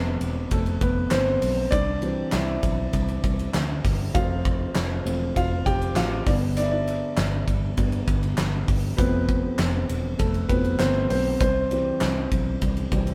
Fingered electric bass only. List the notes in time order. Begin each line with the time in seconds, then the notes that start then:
Already playing: F1
0.21 E1
0.52 F1
0.81 F1
1.12 G1
1.42 B1
1.72 C2
2.33 C2
2.63 B1
2.94 C2
3.24 C2
3.54 D2
3.85 G1
4.15 F1
4.76 F1
5.05 E1
5.37 F1
5.66 F1
5.95 A1
6.27 G1
7.17 G1
7.48 G1
7.78 G1
8.08 G1
8.38 G1
8.69 G1
8.98 F1
9.59 F1
9.90 E1
10.20 F1
10.50 F1
10.80 G1
11.11 B1
11.41 C2
12.02 C2
12.32 B1
12.62 C2
12.92 C2